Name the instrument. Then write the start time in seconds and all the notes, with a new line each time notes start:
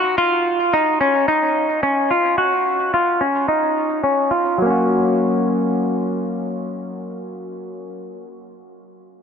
clean electric guitar
Already playing: F#4
0.18 F4
0.73 D#4
1.01 C#4
1.28 D#4
1.83 C#4
2.11 F4
2.38 F#4
2.94 F4
3.21 C#4
3.48 D#4
4.04 C#4
4.31 F4
4.58 F#3 A#3
4.66 C#4 F#4